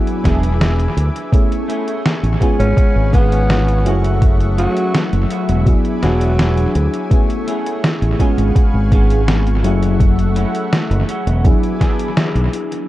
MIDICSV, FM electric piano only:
0, 0, Header, 1, 2, 480
1, 0, Start_track
1, 0, Tempo, 722892
1, 883, Time_signature, 4, 2, 24, 8
1, 8554, End_track
2, 0, Start_track
2, 0, Title_t, "FM electric piano"
2, 0, Program_c, 0, 5
2, 0, Note_on_c, 0, 54, 82
2, 0, Note_on_c, 0, 59, 73
2, 0, Note_on_c, 0, 62, 75
2, 0, Note_on_c, 0, 64, 73
2, 0, Note_on_c, 0, 68, 95
2, 63, Control_c, 0, 64, 127
2, 832, Note_off_c, 0, 54, 0
2, 834, Note_off_c, 0, 59, 0
2, 837, Note_off_c, 0, 62, 0
2, 839, Note_off_c, 0, 64, 0
2, 842, Note_off_c, 0, 68, 0
2, 875, Note_on_c, 0, 57, 84
2, 881, Note_on_c, 0, 59, 73
2, 885, Note_on_c, 0, 61, 73
2, 891, Control_c, 0, 64, 0
2, 891, Note_on_c, 0, 64, 76
2, 894, Note_on_c, 0, 68, 93
2, 996, Control_c, 0, 64, 127
2, 1552, Note_off_c, 0, 57, 0
2, 1555, Note_off_c, 0, 59, 0
2, 1557, Note_off_c, 0, 61, 0
2, 1559, Note_off_c, 0, 64, 0
2, 1561, Note_off_c, 0, 68, 0
2, 1594, Note_on_c, 0, 56, 85
2, 1597, Note_on_c, 0, 59, 76
2, 1603, Note_on_c, 0, 61, 81
2, 1609, Note_on_c, 0, 65, 79
2, 1612, Control_c, 0, 64, 0
2, 1613, Note_on_c, 0, 68, 95
2, 1711, Control_c, 0, 64, 127
2, 2511, Note_off_c, 0, 56, 0
2, 2513, Note_off_c, 0, 59, 0
2, 2516, Note_off_c, 0, 61, 0
2, 2519, Note_off_c, 0, 65, 0
2, 2521, Note_off_c, 0, 68, 0
2, 2554, Note_on_c, 0, 54, 93
2, 2558, Note_on_c, 0, 57, 81
2, 2564, Note_on_c, 0, 61, 83
2, 2568, Note_on_c, 0, 64, 83
2, 2572, Control_c, 0, 64, 0
2, 2573, Note_on_c, 0, 68, 100
2, 2689, Control_c, 0, 64, 127
2, 3711, Note_off_c, 0, 54, 0
2, 3713, Note_off_c, 0, 57, 0
2, 3716, Note_off_c, 0, 61, 0
2, 3718, Note_off_c, 0, 64, 0
2, 3721, Note_off_c, 0, 68, 0
2, 3755, Note_on_c, 0, 54, 81
2, 3760, Note_on_c, 0, 59, 73
2, 3765, Note_on_c, 0, 62, 73
2, 3770, Note_on_c, 0, 64, 77
2, 3771, Control_c, 0, 64, 0
2, 3775, Note_on_c, 0, 68, 94
2, 3891, Control_c, 0, 64, 127
2, 4672, Note_off_c, 0, 54, 0
2, 4674, Note_off_c, 0, 59, 0
2, 4677, Note_off_c, 0, 62, 0
2, 4679, Note_off_c, 0, 64, 0
2, 4682, Note_off_c, 0, 68, 0
2, 4712, Note_on_c, 0, 57, 83
2, 4718, Note_on_c, 0, 59, 75
2, 4724, Note_on_c, 0, 61, 76
2, 4727, Note_on_c, 0, 64, 74
2, 4731, Control_c, 0, 64, 0
2, 4733, Note_on_c, 0, 68, 90
2, 4862, Control_c, 0, 64, 127
2, 5390, Note_off_c, 0, 57, 0
2, 5393, Note_off_c, 0, 59, 0
2, 5396, Note_off_c, 0, 61, 0
2, 5398, Note_off_c, 0, 64, 0
2, 5400, Note_off_c, 0, 68, 0
2, 5434, Note_on_c, 0, 56, 86
2, 5438, Note_on_c, 0, 59, 82
2, 5443, Note_on_c, 0, 61, 79
2, 5448, Note_on_c, 0, 65, 82
2, 5450, Control_c, 0, 64, 0
2, 5452, Note_on_c, 0, 68, 97
2, 5561, Control_c, 0, 64, 127
2, 6351, Note_off_c, 0, 56, 0
2, 6353, Note_off_c, 0, 59, 0
2, 6356, Note_off_c, 0, 61, 0
2, 6358, Note_off_c, 0, 65, 0
2, 6360, Note_off_c, 0, 68, 0
2, 6394, Note_on_c, 0, 54, 89
2, 6399, Note_on_c, 0, 57, 80
2, 6402, Note_on_c, 0, 61, 82
2, 6409, Note_on_c, 0, 64, 80
2, 6412, Control_c, 0, 64, 0
2, 6414, Note_on_c, 0, 68, 95
2, 6524, Control_c, 0, 64, 127
2, 7551, Note_off_c, 0, 54, 0
2, 7553, Note_off_c, 0, 57, 0
2, 7555, Note_off_c, 0, 61, 0
2, 7558, Note_off_c, 0, 64, 0
2, 7561, Note_off_c, 0, 68, 0
2, 7594, Note_on_c, 0, 54, 86
2, 7599, Note_on_c, 0, 59, 79
2, 7604, Note_on_c, 0, 62, 76
2, 7608, Note_on_c, 0, 64, 79
2, 7610, Control_c, 0, 64, 0
2, 7612, Note_on_c, 0, 68, 93
2, 7726, Control_c, 0, 64, 127
2, 8511, Note_off_c, 0, 54, 0
2, 8514, Note_off_c, 0, 59, 0
2, 8516, Note_off_c, 0, 62, 0
2, 8518, Note_off_c, 0, 64, 0
2, 8520, Note_off_c, 0, 68, 0
2, 8554, End_track
0, 0, End_of_file